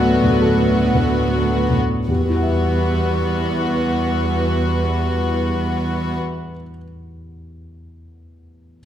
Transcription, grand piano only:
0, 0, Header, 1, 2, 480
1, 0, Start_track
1, 0, Key_signature, 1, "minor"
1, 0, Tempo, 1050788
1, 429, Tempo, 1119403
1, 919, Time_signature, 3, 2, 24, 8
1, 3821, End_track
2, 0, Start_track
2, 0, Title_t, "Grand piano"
2, 0, Program_c, 0, 0
2, 0, Control_c, 0, 64, 127
2, 0, Note_on_c, 0, 38, 38
2, 0, Note_on_c, 0, 45, 29
2, 0, Note_on_c, 0, 59, 33
2, 0, Note_on_c, 0, 71, 61
2, 0, Note_on_c, 0, 74, 59
2, 105, Note_off_c, 0, 45, 0
2, 105, Note_on_c, 0, 45, 26
2, 168, Note_off_c, 0, 71, 0
2, 189, Note_on_c, 0, 69, 51
2, 201, Note_off_c, 0, 59, 0
2, 263, Note_on_c, 0, 59, 32
2, 362, Note_off_c, 0, 45, 0
2, 414, Note_off_c, 0, 69, 0
2, 429, Note_on_c, 0, 45, 29
2, 434, Note_on_c, 0, 71, 43
2, 524, Note_off_c, 0, 59, 0
2, 591, Note_on_c, 0, 59, 23
2, 689, Note_off_c, 0, 45, 0
2, 756, Note_on_c, 0, 45, 23
2, 855, Note_off_c, 0, 59, 0
2, 902, Note_off_c, 0, 38, 0
2, 905, Note_off_c, 0, 71, 0
2, 919, Note_off_c, 0, 45, 0
2, 919, Note_on_c, 0, 40, 26
2, 927, Note_on_c, 0, 67, 37
2, 931, Control_c, 0, 64, 0
2, 933, Note_off_c, 0, 74, 0
2, 949, Note_on_c, 0, 52, 25
2, 979, Note_on_c, 0, 59, 24
2, 1006, Control_c, 0, 64, 127
2, 1009, Note_on_c, 0, 64, 27
2, 1040, Note_on_c, 0, 78, 29
2, 1069, Note_on_c, 0, 76, 28
2, 2809, Note_off_c, 0, 40, 0
2, 2817, Note_off_c, 0, 67, 0
2, 2839, Note_off_c, 0, 52, 0
2, 2869, Note_off_c, 0, 59, 0
2, 2899, Note_off_c, 0, 64, 0
2, 2930, Note_off_c, 0, 78, 0
2, 2959, Note_off_c, 0, 76, 0
2, 3798, Control_c, 0, 64, 0
2, 3821, End_track
0, 0, End_of_file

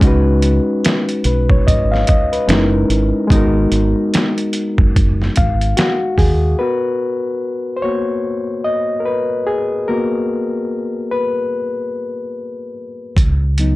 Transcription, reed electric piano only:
0, 0, Header, 1, 2, 480
1, 0, Start_track
1, 0, Tempo, 821918
1, 9, Time_signature, 4, 2, 24, 8
1, 8034, End_track
2, 0, Start_track
2, 0, Title_t, "Reed electric piano"
2, 0, Program_c, 0, 4
2, 0, Control_c, 0, 64, 127
2, 0, Note_on_c, 0, 56, 77
2, 2, Note_on_c, 0, 61, 70
2, 16, Note_on_c, 0, 63, 68
2, 17, Control_c, 0, 64, 0
2, 27, Note_on_c, 0, 66, 76
2, 40, Note_on_c, 0, 71, 83
2, 130, Control_c, 0, 64, 127
2, 731, Note_off_c, 0, 71, 0
2, 737, Note_on_c, 0, 71, 54
2, 870, Note_off_c, 0, 71, 0
2, 878, Note_on_c, 0, 73, 68
2, 967, Note_off_c, 0, 73, 0
2, 974, Note_on_c, 0, 75, 71
2, 1109, Note_off_c, 0, 75, 0
2, 1119, Note_on_c, 0, 77, 64
2, 1207, Note_off_c, 0, 77, 0
2, 1216, Note_on_c, 0, 75, 64
2, 1350, Note_off_c, 0, 75, 0
2, 1358, Note_on_c, 0, 71, 61
2, 1416, Note_off_c, 0, 56, 0
2, 1423, Note_off_c, 0, 61, 0
2, 1429, Note_off_c, 0, 63, 0
2, 1435, Note_off_c, 0, 66, 0
2, 1444, Note_on_c, 0, 56, 72
2, 1449, Note_on_c, 0, 61, 64
2, 1456, Note_on_c, 0, 63, 70
2, 1458, Control_c, 0, 64, 0
2, 1463, Note_on_c, 0, 64, 68
2, 1469, Note_on_c, 0, 70, 78
2, 1557, Control_c, 0, 64, 127
2, 1584, Note_off_c, 0, 71, 0
2, 1905, Note_off_c, 0, 56, 0
2, 1912, Note_on_c, 0, 56, 72
2, 1925, Note_on_c, 0, 59, 69
2, 1929, Note_off_c, 0, 61, 0
2, 1930, Note_off_c, 0, 63, 0
2, 1936, Note_off_c, 0, 64, 0
2, 1937, Note_on_c, 0, 63, 73
2, 1938, Control_c, 0, 64, 0
2, 1939, Note_off_c, 0, 70, 0
2, 1950, Note_on_c, 0, 66, 70
2, 1963, Note_on_c, 0, 70, 82
2, 2033, Control_c, 0, 64, 127
2, 3137, Note_on_c, 0, 77, 65
2, 3357, Note_off_c, 0, 77, 0
2, 3362, Note_off_c, 0, 66, 0
2, 3369, Note_on_c, 0, 66, 86
2, 3377, Note_on_c, 0, 78, 64
2, 3593, Note_off_c, 0, 66, 0
2, 3608, Note_on_c, 0, 68, 86
2, 3817, Note_off_c, 0, 56, 0
2, 3824, Note_off_c, 0, 59, 0
2, 3830, Note_off_c, 0, 63, 0
2, 3830, Note_off_c, 0, 78, 0
2, 3843, Note_off_c, 0, 70, 0
2, 3847, Note_on_c, 0, 71, 88
2, 3852, Note_on_c, 0, 70, 51
2, 3856, Note_off_c, 0, 68, 0
2, 3856, Note_on_c, 0, 59, 47
2, 3857, Control_c, 0, 64, 0
2, 3859, Note_on_c, 0, 66, 54
2, 3957, Control_c, 0, 64, 127
2, 4188, Note_off_c, 0, 70, 0
2, 4190, Note_off_c, 0, 59, 0
2, 4192, Note_off_c, 0, 66, 0
2, 4535, Note_on_c, 0, 72, 70
2, 4556, Note_off_c, 0, 71, 0
2, 4569, Note_off_c, 0, 72, 0
2, 4569, Note_on_c, 0, 73, 80
2, 4576, Note_on_c, 0, 58, 38
2, 4578, Note_on_c, 0, 59, 34
2, 4579, Note_on_c, 0, 66, 49
2, 4789, Note_off_c, 0, 58, 0
2, 4790, Note_off_c, 0, 59, 0
2, 4791, Note_off_c, 0, 66, 0
2, 5048, Note_on_c, 0, 75, 87
2, 5063, Note_off_c, 0, 73, 0
2, 5256, Note_on_c, 0, 70, 57
2, 5262, Note_off_c, 0, 75, 0
2, 5288, Note_on_c, 0, 71, 77
2, 5289, Note_off_c, 0, 70, 0
2, 5528, Note_on_c, 0, 68, 88
2, 5536, Note_off_c, 0, 71, 0
2, 5769, Note_on_c, 0, 70, 84
2, 5774, Note_on_c, 0, 58, 55
2, 5776, Note_off_c, 0, 68, 0
2, 5777, Note_on_c, 0, 59, 49
2, 5780, Note_on_c, 0, 66, 54
2, 6466, Note_off_c, 0, 70, 0
2, 6468, Note_off_c, 0, 58, 0
2, 6470, Note_off_c, 0, 59, 0
2, 6472, Note_off_c, 0, 66, 0
2, 6491, Note_on_c, 0, 71, 76
2, 7427, Note_off_c, 0, 71, 0
2, 7696, Control_c, 0, 64, 0
2, 7794, Control_c, 0, 64, 127
2, 7936, Note_on_c, 0, 54, 45
2, 7939, Note_on_c, 0, 59, 41
2, 7943, Note_on_c, 0, 63, 49
2, 8034, Note_off_c, 0, 54, 0
2, 8034, Note_off_c, 0, 59, 0
2, 8034, Note_off_c, 0, 63, 0
2, 8034, End_track
0, 0, End_of_file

